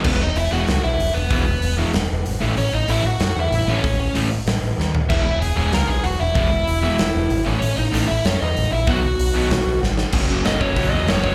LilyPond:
<<
  \new Staff \with { instrumentName = "Lead electric guitar" } { \time 4/4 \key e \lydian \tempo 4 = 190 <b b'>8 <dis' dis''>8 <e' e''>8 <fis' fis''>4 <e' e''>4 <b b'>8~ | <b b'>4. r2 r8 | <cis' cis''>8 <dis' dis''>8 <e' e''>8 <fis' fis''>4 <e' e''>4 <cis' cis''>8~ | <cis' cis''>4. r2 r8 |
<e' e''>8 <e' e''>8 <gis' gis''>8 <gis' gis''>8 <ais' ais''>8 <gis' gis''>8 <fis' fis''>8 <e' e''>8~ | <e' e''>2.~ <e' e''>8 r8 | <cis' cis''>8 <dis' dis''>4 <e' e''>8 <cis' cis''>8 <dis' dis''>4 <e' e''>8 | <fis' fis''>2. r4 |
r4 dis''8 cis''4 dis''8 cis''8 cis''8 | }
  \new Staff \with { instrumentName = "Overdriven electric guitar" } { \time 4/4 \key e \lydian <e gis b e'>8 r4 <e gis b e'>8 r2 | <e gis b e'>8 r4 <e gis b e'>8 r4. <a, e a cis' e'>8 | r4 <a, e a cis' e'>8 r2 <a, e a cis' e'>8 | r4 <a, e a cis' e'>8 r2 r8 |
<e gis b e'>8 r4 <e gis b e'>8 r2 | <e gis b e'>8 r4 <e gis b e'>8 r4. <a, e a cis' e'>8 | r4 <a, e a cis' e'>8 r2 r8 | <b, dis fis b dis'>8 r4 <b, dis fis b dis'>8 r2 |
<fis ais cis' fis'>8 <fis ais cis' fis'>8 <fis ais cis' fis'>8 <fis ais cis' fis'>8 <fis ais cis' fis'>8 <fis ais cis' fis'>8 <fis ais cis' fis'>8 <fis ais cis' fis'>8 | }
  \new Staff \with { instrumentName = "Overdriven electric guitar" } { \clef bass \time 4/4 \key e \lydian <e, b, e>8 r4 <e, b, e>8 r2 | <e, b, e>8 r4 <e, b, e>8 r4. <a, e a>8 | r4 <a, e a>8 r2 <a, e a>8 | r4 <a, e a>8 r2 r8 |
<e, b, e>8 r4 <e, b, e>8 r2 | <e, b, e>8 r4 <e, b, e>8 r4. <a, e a>8 | r4 <a, e a>8 r2 r8 | <b, fis b>8 r4 <b, fis b>8 r2 |
<fis, cis fis>8 <fis, cis fis>8 <fis, cis fis>8 <fis, cis fis>8 <fis, cis fis>8 <fis, cis fis>8 <fis, cis fis>8 <fis, cis fis>8 | }
  \new Staff \with { instrumentName = "Picked electric bass" } { \clef bass \time 4/4 \key e \lydian e,,8 e,,8 e,,8 e,,8 cis,8 b,,8 e,,8 e,,8 | e,,8 e,,8 e,,4 e,,8 e,,8 gis,,8 a,,8 | a,,8 a,,8 a,,8 a,,8 fis,8 e,8 a,,8 a,,8 | a,,8 a,,8 a,,4 a,,8 a,,8 dis,4 |
e,,8 e,,8 e,,8 e,,8 cis,8 b,,8 e,,8 e,,8 | e,,8 e,,8 e,,4 e,,8 e,,8 gis,,8 a,,8 | a,,8 a,,8 a,,8 a,,8 fis,8 e,8 a,,8 ais,,8 | b,,8 b,,8 b,,4 b,,8 b,,8 gis,,4 |
fis,,4 fis,,8 fis,,8 ais,,8 e,8 fis,,4 | }
  \new DrumStaff \with { instrumentName = "Drums" } \drummode { \time 4/4 <cymc bd>4 hho4 <hho sn>4 hho4 | <hho bd>4 hho4 <hho sn>4 hho4 | hho4 hho4 <hho sn>4 hho4 | <hho bd>4 hho4 <hho sn>4 sn8 tomfh8 |
<cymc bd>4 hho4 <hho sn>4 hho4 | <hho bd>4 hho4 <hho sn>4 hho4 | hho4 hho4 <hho sn>4 hho4 | <hho bd>4 hho4 <hho sn>4 sn8 sn8 |
<cymc bd>4 <hho sn>8 bd8 <hho bd>4 <hho sn>8 bd8 | }
>>